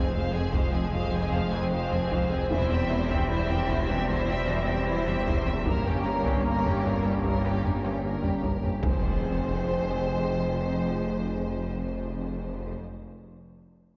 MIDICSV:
0, 0, Header, 1, 13, 480
1, 0, Start_track
1, 0, Key_signature, -4, "minor"
1, 0, Tempo, 789474
1, 1531, Time_signature, 4, 2, 24, 8
1, 8493, End_track
2, 0, Start_track
2, 0, Title_t, "Violin section"
2, 0, Program_c, 0, 48
2, 0, Note_on_c, 0, 80, 76
2, 84, Note_on_c, 0, 77, 80
2, 90, Note_off_c, 0, 80, 0
2, 199, Note_off_c, 0, 77, 0
2, 206, Note_on_c, 0, 80, 73
2, 329, Note_off_c, 0, 80, 0
2, 332, Note_on_c, 0, 77, 73
2, 452, Note_off_c, 0, 77, 0
2, 452, Note_on_c, 0, 80, 83
2, 572, Note_off_c, 0, 80, 0
2, 573, Note_on_c, 0, 77, 93
2, 684, Note_off_c, 0, 77, 0
2, 691, Note_on_c, 0, 80, 78
2, 811, Note_off_c, 0, 80, 0
2, 812, Note_on_c, 0, 77, 96
2, 928, Note_on_c, 0, 80, 83
2, 932, Note_off_c, 0, 77, 0
2, 1048, Note_on_c, 0, 77, 83
2, 1049, Note_off_c, 0, 80, 0
2, 1161, Note_off_c, 0, 77, 0
2, 1170, Note_on_c, 0, 80, 84
2, 1285, Note_on_c, 0, 77, 84
2, 1291, Note_off_c, 0, 80, 0
2, 1407, Note_on_c, 0, 80, 82
2, 1408, Note_off_c, 0, 77, 0
2, 1529, Note_off_c, 0, 80, 0
2, 1532, Note_on_c, 0, 76, 85
2, 1643, Note_off_c, 0, 76, 0
2, 1650, Note_on_c, 0, 79, 88
2, 1766, Note_on_c, 0, 76, 81
2, 1771, Note_off_c, 0, 79, 0
2, 1888, Note_off_c, 0, 76, 0
2, 1888, Note_on_c, 0, 79, 89
2, 2006, Note_on_c, 0, 76, 102
2, 2010, Note_off_c, 0, 79, 0
2, 2120, Note_off_c, 0, 76, 0
2, 2130, Note_on_c, 0, 79, 90
2, 2251, Note_off_c, 0, 79, 0
2, 2252, Note_on_c, 0, 76, 88
2, 2371, Note_off_c, 0, 76, 0
2, 2378, Note_on_c, 0, 79, 92
2, 2492, Note_on_c, 0, 76, 103
2, 2495, Note_off_c, 0, 79, 0
2, 2603, Note_off_c, 0, 76, 0
2, 2618, Note_on_c, 0, 79, 95
2, 2726, Note_on_c, 0, 76, 112
2, 2734, Note_off_c, 0, 79, 0
2, 2848, Note_off_c, 0, 76, 0
2, 2849, Note_on_c, 0, 79, 96
2, 2968, Note_on_c, 0, 76, 87
2, 2970, Note_off_c, 0, 79, 0
2, 3081, Note_off_c, 0, 76, 0
2, 3087, Note_on_c, 0, 79, 88
2, 3209, Note_off_c, 0, 79, 0
2, 3213, Note_on_c, 0, 76, 93
2, 3323, Note_on_c, 0, 79, 87
2, 3332, Note_off_c, 0, 76, 0
2, 3447, Note_off_c, 0, 79, 0
2, 3453, Note_on_c, 0, 82, 99
2, 3564, Note_off_c, 0, 82, 0
2, 3564, Note_on_c, 0, 79, 90
2, 3676, Note_on_c, 0, 82, 90
2, 3688, Note_off_c, 0, 79, 0
2, 3796, Note_on_c, 0, 79, 99
2, 3804, Note_off_c, 0, 82, 0
2, 3924, Note_off_c, 0, 79, 0
2, 3926, Note_on_c, 0, 82, 96
2, 4040, Note_off_c, 0, 82, 0
2, 4049, Note_on_c, 0, 79, 83
2, 4170, Note_off_c, 0, 79, 0
2, 4172, Note_on_c, 0, 82, 85
2, 4286, Note_on_c, 0, 79, 91
2, 4292, Note_off_c, 0, 82, 0
2, 4409, Note_off_c, 0, 79, 0
2, 4410, Note_on_c, 0, 82, 89
2, 4522, Note_off_c, 0, 82, 0
2, 4525, Note_on_c, 0, 79, 80
2, 4648, Note_off_c, 0, 79, 0
2, 4649, Note_on_c, 0, 82, 87
2, 4767, Note_on_c, 0, 79, 73
2, 4770, Note_off_c, 0, 82, 0
2, 4889, Note_off_c, 0, 79, 0
2, 4891, Note_on_c, 0, 82, 68
2, 5003, Note_off_c, 0, 82, 0
2, 5015, Note_on_c, 0, 79, 67
2, 5129, Note_on_c, 0, 82, 66
2, 5133, Note_off_c, 0, 79, 0
2, 5249, Note_on_c, 0, 79, 69
2, 5250, Note_off_c, 0, 82, 0
2, 5369, Note_on_c, 0, 80, 85
2, 5370, Note_off_c, 0, 79, 0
2, 7752, Note_off_c, 0, 80, 0
2, 8493, End_track
3, 0, Start_track
3, 0, Title_t, "Violin section"
3, 0, Program_c, 1, 48
3, 0, Note_on_c, 1, 68, 73
3, 85, Note_off_c, 1, 68, 0
3, 92, Note_on_c, 1, 72, 87
3, 203, Note_off_c, 1, 72, 0
3, 208, Note_on_c, 1, 68, 78
3, 325, Note_on_c, 1, 72, 83
3, 330, Note_off_c, 1, 68, 0
3, 448, Note_off_c, 1, 72, 0
3, 450, Note_on_c, 1, 68, 80
3, 571, Note_off_c, 1, 68, 0
3, 574, Note_on_c, 1, 72, 81
3, 684, Note_off_c, 1, 72, 0
3, 700, Note_on_c, 1, 68, 89
3, 815, Note_on_c, 1, 72, 78
3, 816, Note_off_c, 1, 68, 0
3, 931, Note_on_c, 1, 68, 78
3, 933, Note_off_c, 1, 72, 0
3, 1051, Note_off_c, 1, 68, 0
3, 1051, Note_on_c, 1, 72, 83
3, 1163, Note_off_c, 1, 72, 0
3, 1169, Note_on_c, 1, 68, 82
3, 1290, Note_off_c, 1, 68, 0
3, 1293, Note_on_c, 1, 72, 91
3, 1409, Note_on_c, 1, 68, 94
3, 1412, Note_off_c, 1, 72, 0
3, 1526, Note_on_c, 1, 72, 97
3, 1530, Note_off_c, 1, 68, 0
3, 1640, Note_off_c, 1, 72, 0
3, 1646, Note_on_c, 1, 76, 89
3, 1769, Note_off_c, 1, 76, 0
3, 1769, Note_on_c, 1, 72, 93
3, 1887, Note_on_c, 1, 76, 86
3, 1890, Note_off_c, 1, 72, 0
3, 2001, Note_on_c, 1, 72, 92
3, 2009, Note_off_c, 1, 76, 0
3, 2117, Note_off_c, 1, 72, 0
3, 2128, Note_on_c, 1, 76, 89
3, 2250, Note_off_c, 1, 76, 0
3, 2254, Note_on_c, 1, 72, 95
3, 2372, Note_off_c, 1, 72, 0
3, 2374, Note_on_c, 1, 76, 95
3, 2484, Note_on_c, 1, 72, 101
3, 2493, Note_off_c, 1, 76, 0
3, 2599, Note_off_c, 1, 72, 0
3, 2616, Note_on_c, 1, 76, 105
3, 2724, Note_on_c, 1, 72, 88
3, 2734, Note_off_c, 1, 76, 0
3, 2847, Note_on_c, 1, 76, 87
3, 2848, Note_off_c, 1, 72, 0
3, 2967, Note_on_c, 1, 72, 94
3, 2969, Note_off_c, 1, 76, 0
3, 3081, Note_off_c, 1, 72, 0
3, 3092, Note_on_c, 1, 76, 90
3, 3208, Note_on_c, 1, 72, 101
3, 3212, Note_off_c, 1, 76, 0
3, 3329, Note_off_c, 1, 72, 0
3, 3331, Note_on_c, 1, 76, 90
3, 3451, Note_off_c, 1, 76, 0
3, 3452, Note_on_c, 1, 70, 100
3, 3563, Note_off_c, 1, 70, 0
3, 3578, Note_on_c, 1, 67, 88
3, 3693, Note_on_c, 1, 70, 92
3, 3695, Note_off_c, 1, 67, 0
3, 3812, Note_off_c, 1, 70, 0
3, 3818, Note_on_c, 1, 67, 81
3, 3934, Note_off_c, 1, 67, 0
3, 3941, Note_on_c, 1, 70, 96
3, 4048, Note_off_c, 1, 70, 0
3, 4057, Note_on_c, 1, 67, 87
3, 4173, Note_on_c, 1, 70, 90
3, 4174, Note_off_c, 1, 67, 0
3, 4285, Note_on_c, 1, 67, 80
3, 4292, Note_off_c, 1, 70, 0
3, 4406, Note_on_c, 1, 70, 88
3, 4408, Note_off_c, 1, 67, 0
3, 4520, Note_off_c, 1, 70, 0
3, 4531, Note_on_c, 1, 67, 90
3, 4649, Note_on_c, 1, 70, 71
3, 4651, Note_off_c, 1, 67, 0
3, 4764, Note_on_c, 1, 67, 70
3, 4770, Note_off_c, 1, 70, 0
3, 4888, Note_off_c, 1, 67, 0
3, 4889, Note_on_c, 1, 70, 71
3, 5002, Note_off_c, 1, 70, 0
3, 5018, Note_on_c, 1, 67, 66
3, 5135, Note_off_c, 1, 67, 0
3, 5140, Note_on_c, 1, 70, 69
3, 5255, Note_off_c, 1, 70, 0
3, 5258, Note_on_c, 1, 67, 67
3, 5375, Note_off_c, 1, 67, 0
3, 5382, Note_on_c, 1, 72, 94
3, 7759, Note_off_c, 1, 72, 0
3, 8493, End_track
4, 0, Start_track
4, 0, Title_t, "Analog synth pad"
4, 0, Program_c, 2, 89
4, 0, Note_on_c, 2, 53, 102
4, 0, Note_on_c, 2, 60, 96
4, 0, Note_on_c, 2, 68, 109
4, 0, Note_on_c, 2, 72, 104
4, 1503, Note_off_c, 2, 53, 0
4, 1505, Note_off_c, 2, 68, 0
4, 1530, Note_on_c, 2, 67, 110
4, 1532, Note_on_c, 2, 55, 104
4, 3425, Note_off_c, 2, 72, 0
4, 3426, Note_off_c, 2, 60, 0
4, 3449, Note_on_c, 2, 58, 113
4, 3452, Note_on_c, 2, 73, 107
4, 5366, Note_on_c, 2, 53, 104
4, 5368, Note_on_c, 2, 60, 110
4, 5370, Note_off_c, 2, 58, 0
4, 5370, Note_on_c, 2, 72, 104
4, 5371, Note_off_c, 2, 55, 0
4, 5371, Note_off_c, 2, 67, 0
4, 5372, Note_off_c, 2, 73, 0
4, 5372, Note_on_c, 2, 68, 106
4, 7751, Note_off_c, 2, 53, 0
4, 7752, Note_off_c, 2, 60, 0
4, 7753, Note_off_c, 2, 72, 0
4, 7754, Note_off_c, 2, 68, 0
4, 8493, End_track
5, 0, Start_track
5, 0, Title_t, "Viola section"
5, 0, Program_c, 3, 48
5, 0, Note_on_c, 3, 60, 90
5, 92, Note_off_c, 3, 60, 0
5, 93, Note_on_c, 3, 56, 74
5, 203, Note_off_c, 3, 56, 0
5, 208, Note_on_c, 3, 60, 71
5, 327, Note_on_c, 3, 56, 71
5, 330, Note_off_c, 3, 60, 0
5, 449, Note_off_c, 3, 56, 0
5, 450, Note_on_c, 3, 60, 82
5, 570, Note_off_c, 3, 60, 0
5, 575, Note_on_c, 3, 56, 87
5, 685, Note_off_c, 3, 56, 0
5, 691, Note_on_c, 3, 60, 82
5, 808, Note_on_c, 3, 56, 82
5, 811, Note_off_c, 3, 60, 0
5, 929, Note_off_c, 3, 56, 0
5, 934, Note_on_c, 3, 60, 96
5, 1053, Note_off_c, 3, 60, 0
5, 1055, Note_on_c, 3, 56, 81
5, 1165, Note_off_c, 3, 56, 0
5, 1173, Note_on_c, 3, 60, 86
5, 1292, Note_off_c, 3, 60, 0
5, 1293, Note_on_c, 3, 56, 82
5, 1411, Note_on_c, 3, 60, 78
5, 1412, Note_off_c, 3, 56, 0
5, 1525, Note_on_c, 3, 64, 97
5, 1531, Note_off_c, 3, 60, 0
5, 1640, Note_off_c, 3, 64, 0
5, 1643, Note_on_c, 3, 60, 95
5, 1767, Note_off_c, 3, 60, 0
5, 1767, Note_on_c, 3, 64, 91
5, 1885, Note_on_c, 3, 60, 109
5, 1889, Note_off_c, 3, 64, 0
5, 2004, Note_on_c, 3, 64, 94
5, 2008, Note_off_c, 3, 60, 0
5, 2119, Note_off_c, 3, 64, 0
5, 2125, Note_on_c, 3, 60, 88
5, 2236, Note_on_c, 3, 64, 99
5, 2248, Note_off_c, 3, 60, 0
5, 2364, Note_off_c, 3, 64, 0
5, 2370, Note_on_c, 3, 60, 97
5, 2488, Note_on_c, 3, 64, 95
5, 2490, Note_off_c, 3, 60, 0
5, 2601, Note_off_c, 3, 64, 0
5, 2604, Note_on_c, 3, 60, 84
5, 2724, Note_on_c, 3, 64, 92
5, 2728, Note_off_c, 3, 60, 0
5, 2848, Note_off_c, 3, 64, 0
5, 2849, Note_on_c, 3, 60, 101
5, 2960, Note_on_c, 3, 64, 97
5, 2970, Note_off_c, 3, 60, 0
5, 3077, Note_off_c, 3, 64, 0
5, 3082, Note_on_c, 3, 60, 87
5, 3201, Note_on_c, 3, 64, 93
5, 3206, Note_off_c, 3, 60, 0
5, 3319, Note_on_c, 3, 60, 86
5, 3326, Note_off_c, 3, 64, 0
5, 3444, Note_on_c, 3, 58, 93
5, 3445, Note_off_c, 3, 60, 0
5, 3559, Note_off_c, 3, 58, 0
5, 3568, Note_on_c, 3, 61, 94
5, 3689, Note_off_c, 3, 61, 0
5, 3689, Note_on_c, 3, 58, 85
5, 3806, Note_on_c, 3, 61, 97
5, 3810, Note_off_c, 3, 58, 0
5, 3929, Note_off_c, 3, 61, 0
5, 3930, Note_on_c, 3, 58, 90
5, 4042, Note_off_c, 3, 58, 0
5, 4046, Note_on_c, 3, 61, 80
5, 4168, Note_off_c, 3, 61, 0
5, 4172, Note_on_c, 3, 58, 85
5, 4291, Note_on_c, 3, 61, 80
5, 4292, Note_off_c, 3, 58, 0
5, 4411, Note_off_c, 3, 61, 0
5, 4415, Note_on_c, 3, 58, 88
5, 4525, Note_off_c, 3, 58, 0
5, 4531, Note_on_c, 3, 61, 86
5, 4648, Note_on_c, 3, 58, 76
5, 4651, Note_off_c, 3, 61, 0
5, 4770, Note_off_c, 3, 58, 0
5, 4774, Note_on_c, 3, 61, 83
5, 4888, Note_on_c, 3, 58, 66
5, 4893, Note_off_c, 3, 61, 0
5, 5001, Note_off_c, 3, 58, 0
5, 5007, Note_on_c, 3, 61, 71
5, 5129, Note_off_c, 3, 61, 0
5, 5132, Note_on_c, 3, 58, 72
5, 5244, Note_on_c, 3, 61, 64
5, 5252, Note_off_c, 3, 58, 0
5, 5363, Note_on_c, 3, 60, 87
5, 5368, Note_off_c, 3, 61, 0
5, 7749, Note_off_c, 3, 60, 0
5, 8493, End_track
6, 0, Start_track
6, 0, Title_t, "French horn section"
6, 0, Program_c, 4, 60
6, 0, Note_on_c, 4, 56, 91
6, 0, Note_on_c, 4, 60, 92
6, 1505, Note_off_c, 4, 56, 0
6, 1532, Note_on_c, 4, 55, 104
6, 3353, Note_off_c, 4, 55, 0
6, 3353, Note_off_c, 4, 60, 0
6, 3456, Note_on_c, 4, 61, 114
6, 3459, Note_on_c, 4, 58, 122
6, 5155, Note_off_c, 4, 61, 0
6, 5156, Note_off_c, 4, 58, 0
6, 5368, Note_on_c, 4, 56, 95
6, 5368, Note_on_c, 4, 60, 98
6, 7752, Note_off_c, 4, 56, 0
6, 7752, Note_off_c, 4, 60, 0
6, 8493, End_track
7, 0, Start_track
7, 0, Title_t, "Synth arpeggio sound"
7, 0, Program_c, 5, 84
7, 101, Note_on_c, 5, 56, 79
7, 170, Note_off_c, 5, 56, 0
7, 220, Note_on_c, 5, 56, 76
7, 290, Note_off_c, 5, 56, 0
7, 345, Note_on_c, 5, 53, 116
7, 413, Note_off_c, 5, 53, 0
7, 464, Note_on_c, 5, 60, 74
7, 532, Note_off_c, 5, 60, 0
7, 582, Note_on_c, 5, 53, 115
7, 651, Note_off_c, 5, 53, 0
7, 703, Note_on_c, 5, 56, 90
7, 771, Note_off_c, 5, 56, 0
7, 826, Note_on_c, 5, 60, 94
7, 893, Note_off_c, 5, 60, 0
7, 939, Note_on_c, 5, 53, 127
7, 1008, Note_off_c, 5, 53, 0
7, 1059, Note_on_c, 5, 65, 86
7, 1128, Note_off_c, 5, 65, 0
7, 1183, Note_on_c, 5, 60, 84
7, 1251, Note_off_c, 5, 60, 0
7, 1300, Note_on_c, 5, 53, 126
7, 1369, Note_off_c, 5, 53, 0
7, 1422, Note_on_c, 5, 56, 98
7, 1490, Note_off_c, 5, 56, 0
7, 1539, Note_on_c, 5, 48, 123
7, 1609, Note_off_c, 5, 48, 0
7, 1661, Note_on_c, 5, 60, 77
7, 1730, Note_off_c, 5, 60, 0
7, 1781, Note_on_c, 5, 60, 101
7, 1850, Note_off_c, 5, 60, 0
7, 1905, Note_on_c, 5, 48, 117
7, 1973, Note_off_c, 5, 48, 0
7, 2021, Note_on_c, 5, 52, 86
7, 2090, Note_off_c, 5, 52, 0
7, 2138, Note_on_c, 5, 52, 78
7, 2208, Note_off_c, 5, 52, 0
7, 2256, Note_on_c, 5, 48, 127
7, 2326, Note_off_c, 5, 48, 0
7, 2376, Note_on_c, 5, 55, 82
7, 2447, Note_off_c, 5, 55, 0
7, 2490, Note_on_c, 5, 48, 125
7, 2562, Note_off_c, 5, 48, 0
7, 2612, Note_on_c, 5, 52, 89
7, 2684, Note_off_c, 5, 52, 0
7, 2732, Note_on_c, 5, 55, 95
7, 2804, Note_off_c, 5, 55, 0
7, 2850, Note_on_c, 5, 48, 126
7, 2923, Note_off_c, 5, 48, 0
7, 2970, Note_on_c, 5, 60, 97
7, 3042, Note_off_c, 5, 60, 0
7, 3094, Note_on_c, 5, 55, 91
7, 3165, Note_off_c, 5, 55, 0
7, 3213, Note_on_c, 5, 48, 127
7, 3285, Note_off_c, 5, 48, 0
7, 3334, Note_on_c, 5, 52, 87
7, 3405, Note_off_c, 5, 52, 0
7, 3451, Note_on_c, 5, 55, 120
7, 3523, Note_off_c, 5, 55, 0
7, 3577, Note_on_c, 5, 67, 79
7, 3647, Note_off_c, 5, 67, 0
7, 3695, Note_on_c, 5, 67, 98
7, 3766, Note_off_c, 5, 67, 0
7, 3813, Note_on_c, 5, 55, 110
7, 3885, Note_off_c, 5, 55, 0
7, 3932, Note_on_c, 5, 58, 91
7, 4003, Note_off_c, 5, 58, 0
7, 4058, Note_on_c, 5, 58, 88
7, 4128, Note_off_c, 5, 58, 0
7, 4178, Note_on_c, 5, 55, 115
7, 4248, Note_off_c, 5, 55, 0
7, 4296, Note_on_c, 5, 61, 81
7, 4367, Note_off_c, 5, 61, 0
7, 4411, Note_on_c, 5, 55, 106
7, 4483, Note_off_c, 5, 55, 0
7, 4540, Note_on_c, 5, 58, 89
7, 4609, Note_off_c, 5, 58, 0
7, 4660, Note_on_c, 5, 61, 92
7, 4729, Note_off_c, 5, 61, 0
7, 4781, Note_on_c, 5, 55, 126
7, 4850, Note_off_c, 5, 55, 0
7, 4899, Note_on_c, 5, 67, 86
7, 4968, Note_off_c, 5, 67, 0
7, 5018, Note_on_c, 5, 61, 84
7, 5088, Note_off_c, 5, 61, 0
7, 5140, Note_on_c, 5, 55, 124
7, 5209, Note_off_c, 5, 55, 0
7, 5259, Note_on_c, 5, 58, 90
7, 5329, Note_off_c, 5, 58, 0
7, 8493, End_track
8, 0, Start_track
8, 0, Title_t, "Analog synth bass"
8, 0, Program_c, 6, 38
8, 89, Note_on_c, 6, 41, 82
8, 161, Note_off_c, 6, 41, 0
8, 207, Note_on_c, 6, 41, 81
8, 280, Note_off_c, 6, 41, 0
8, 329, Note_on_c, 6, 41, 124
8, 402, Note_off_c, 6, 41, 0
8, 447, Note_on_c, 6, 53, 83
8, 520, Note_off_c, 6, 53, 0
8, 565, Note_on_c, 6, 41, 112
8, 639, Note_off_c, 6, 41, 0
8, 686, Note_on_c, 6, 41, 85
8, 759, Note_off_c, 6, 41, 0
8, 809, Note_on_c, 6, 53, 91
8, 881, Note_off_c, 6, 53, 0
8, 927, Note_on_c, 6, 41, 127
8, 1000, Note_off_c, 6, 41, 0
8, 1052, Note_on_c, 6, 41, 84
8, 1124, Note_off_c, 6, 41, 0
8, 1177, Note_on_c, 6, 53, 80
8, 1247, Note_off_c, 6, 53, 0
8, 1292, Note_on_c, 6, 41, 124
8, 1364, Note_off_c, 6, 41, 0
8, 1413, Note_on_c, 6, 41, 92
8, 1484, Note_off_c, 6, 41, 0
8, 1527, Note_on_c, 6, 40, 105
8, 1600, Note_off_c, 6, 40, 0
8, 1650, Note_on_c, 6, 40, 84
8, 1722, Note_off_c, 6, 40, 0
8, 1766, Note_on_c, 6, 40, 92
8, 1840, Note_off_c, 6, 40, 0
8, 1886, Note_on_c, 6, 40, 121
8, 1960, Note_off_c, 6, 40, 0
8, 2009, Note_on_c, 6, 40, 90
8, 2082, Note_off_c, 6, 40, 0
8, 2128, Note_on_c, 6, 40, 99
8, 2201, Note_off_c, 6, 40, 0
8, 2250, Note_on_c, 6, 40, 110
8, 2323, Note_off_c, 6, 40, 0
8, 2366, Note_on_c, 6, 52, 86
8, 2440, Note_off_c, 6, 52, 0
8, 2485, Note_on_c, 6, 40, 103
8, 2559, Note_off_c, 6, 40, 0
8, 2608, Note_on_c, 6, 40, 95
8, 2681, Note_off_c, 6, 40, 0
8, 2722, Note_on_c, 6, 52, 100
8, 2797, Note_off_c, 6, 52, 0
8, 2840, Note_on_c, 6, 40, 127
8, 2915, Note_off_c, 6, 40, 0
8, 2963, Note_on_c, 6, 40, 87
8, 3037, Note_off_c, 6, 40, 0
8, 3085, Note_on_c, 6, 52, 86
8, 3158, Note_off_c, 6, 52, 0
8, 3203, Note_on_c, 6, 40, 127
8, 3277, Note_off_c, 6, 40, 0
8, 3328, Note_on_c, 6, 40, 98
8, 3401, Note_off_c, 6, 40, 0
8, 3446, Note_on_c, 6, 43, 108
8, 3520, Note_off_c, 6, 43, 0
8, 3564, Note_on_c, 6, 43, 80
8, 3638, Note_off_c, 6, 43, 0
8, 3683, Note_on_c, 6, 43, 82
8, 3757, Note_off_c, 6, 43, 0
8, 3808, Note_on_c, 6, 43, 127
8, 3881, Note_off_c, 6, 43, 0
8, 3930, Note_on_c, 6, 43, 89
8, 4003, Note_off_c, 6, 43, 0
8, 4049, Note_on_c, 6, 43, 95
8, 4122, Note_off_c, 6, 43, 0
8, 4171, Note_on_c, 6, 43, 124
8, 4243, Note_off_c, 6, 43, 0
8, 4294, Note_on_c, 6, 55, 87
8, 4365, Note_off_c, 6, 55, 0
8, 4414, Note_on_c, 6, 43, 114
8, 4485, Note_off_c, 6, 43, 0
8, 4529, Note_on_c, 6, 43, 83
8, 4601, Note_off_c, 6, 43, 0
8, 4647, Note_on_c, 6, 55, 97
8, 4721, Note_off_c, 6, 55, 0
8, 4769, Note_on_c, 6, 43, 127
8, 4842, Note_off_c, 6, 43, 0
8, 4885, Note_on_c, 6, 43, 89
8, 4959, Note_off_c, 6, 43, 0
8, 5001, Note_on_c, 6, 55, 75
8, 5076, Note_off_c, 6, 55, 0
8, 5121, Note_on_c, 6, 43, 110
8, 5196, Note_off_c, 6, 43, 0
8, 5248, Note_on_c, 6, 43, 78
8, 5321, Note_off_c, 6, 43, 0
8, 8493, End_track
9, 0, Start_track
9, 0, Title_t, "Cello section"
9, 0, Program_c, 7, 48
9, 0, Note_on_c, 7, 41, 96
9, 1506, Note_off_c, 7, 41, 0
9, 1534, Note_on_c, 7, 40, 119
9, 3449, Note_on_c, 7, 43, 114
9, 3453, Note_off_c, 7, 40, 0
9, 5248, Note_off_c, 7, 43, 0
9, 5372, Note_on_c, 7, 41, 94
9, 7754, Note_off_c, 7, 41, 0
9, 8493, End_track
10, 0, Start_track
10, 0, Title_t, "Detuned saw bass"
10, 0, Program_c, 8, 39
10, 0, Note_on_c, 8, 29, 86
10, 1531, Note_on_c, 8, 28, 104
10, 1540, Note_off_c, 8, 29, 0
10, 3447, Note_on_c, 8, 31, 105
10, 3457, Note_off_c, 8, 28, 0
10, 5364, Note_off_c, 8, 31, 0
10, 5367, Note_on_c, 8, 29, 95
10, 7751, Note_off_c, 8, 29, 0
10, 8493, End_track
11, 0, Start_track
11, 0, Title_t, "Double bass section"
11, 0, Program_c, 10, 48
11, 0, Note_on_c, 10, 29, 92
11, 1504, Note_off_c, 10, 29, 0
11, 1531, Note_on_c, 10, 28, 111
11, 3443, Note_on_c, 10, 31, 106
11, 3451, Note_off_c, 10, 28, 0
11, 5245, Note_off_c, 10, 31, 0
11, 5371, Note_on_c, 10, 29, 85
11, 7753, Note_off_c, 10, 29, 0
11, 8493, End_track
12, 0, Start_track
12, 0, Title_t, "Impact"
12, 0, Program_c, 11, 103
12, 5368, Note_on_c, 11, 60, 91
12, 7989, Note_off_c, 11, 60, 0
12, 8493, End_track
13, 0, Start_track
13, 0, Title_t, "Taiko and cinematic ensemble drums"
13, 207, Note_on_c, 9, 43, 64
13, 268, Note_off_c, 9, 43, 0
13, 325, Note_on_c, 9, 41, 97
13, 386, Note_off_c, 9, 41, 0
13, 567, Note_on_c, 9, 41, 89
13, 628, Note_off_c, 9, 41, 0
13, 807, Note_on_c, 9, 43, 68
13, 868, Note_off_c, 9, 43, 0
13, 1167, Note_on_c, 9, 43, 61
13, 1228, Note_off_c, 9, 43, 0
13, 1284, Note_on_c, 9, 41, 103
13, 1345, Note_off_c, 9, 41, 0
13, 1405, Note_on_c, 9, 43, 68
13, 1466, Note_off_c, 9, 43, 0
13, 1524, Note_on_c, 9, 41, 115
13, 1585, Note_off_c, 9, 41, 0
13, 1649, Note_on_c, 9, 43, 70
13, 1710, Note_off_c, 9, 43, 0
13, 1886, Note_on_c, 9, 41, 95
13, 1947, Note_off_c, 9, 41, 0
13, 2127, Note_on_c, 9, 43, 69
13, 2187, Note_off_c, 9, 43, 0
13, 2244, Note_on_c, 9, 41, 99
13, 2305, Note_off_c, 9, 41, 0
13, 2486, Note_on_c, 9, 41, 89
13, 2547, Note_off_c, 9, 41, 0
13, 2724, Note_on_c, 9, 43, 83
13, 2785, Note_off_c, 9, 43, 0
13, 3083, Note_on_c, 9, 43, 61
13, 3144, Note_off_c, 9, 43, 0
13, 3204, Note_on_c, 9, 41, 113
13, 3265, Note_off_c, 9, 41, 0
13, 3322, Note_on_c, 9, 43, 72
13, 3383, Note_off_c, 9, 43, 0
13, 3438, Note_on_c, 9, 41, 118
13, 3499, Note_off_c, 9, 41, 0
13, 3561, Note_on_c, 9, 43, 69
13, 3622, Note_off_c, 9, 43, 0
13, 3802, Note_on_c, 9, 41, 95
13, 3863, Note_off_c, 9, 41, 0
13, 4045, Note_on_c, 9, 43, 67
13, 4106, Note_off_c, 9, 43, 0
13, 4163, Note_on_c, 9, 41, 99
13, 4224, Note_off_c, 9, 41, 0
13, 4404, Note_on_c, 9, 41, 91
13, 4465, Note_off_c, 9, 41, 0
13, 4527, Note_on_c, 9, 37, 49
13, 4587, Note_off_c, 9, 37, 0
13, 4646, Note_on_c, 9, 43, 70
13, 4707, Note_off_c, 9, 43, 0
13, 4770, Note_on_c, 9, 37, 45
13, 4830, Note_off_c, 9, 37, 0
13, 5008, Note_on_c, 9, 43, 60
13, 5069, Note_off_c, 9, 43, 0
13, 5130, Note_on_c, 9, 41, 91
13, 5191, Note_off_c, 9, 41, 0
13, 5248, Note_on_c, 9, 43, 66
13, 5309, Note_off_c, 9, 43, 0
13, 5368, Note_on_c, 9, 41, 107
13, 5429, Note_off_c, 9, 41, 0
13, 8493, End_track
0, 0, End_of_file